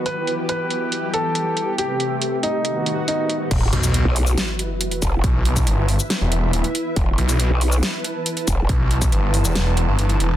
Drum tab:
CC |----------------|----------------|x---------------|----------------|
HH |x-x-x-x-x-x-x-x-|x-x-x-x-x-x-x-x-|x-xxx-o-x-x-xxx-|x-xxx-o-x-x-xxx-|
SH |----------------|----------------|---x---x------x-|---x---x--------|
SD |----------------|----------------|--------o-------|--------o-------|
BD |----------------|----------------|o-------------o-|o--o------------|

CC |----------------|----------------|
HH |x-xxx-o-x-x-xxx-|x-xxx-o-x-x-xxx-|
SH |---x---x------x-|---x---x--------|
SD |--------o-------|--------o-------|
BD |o-------------o-|o--o------------|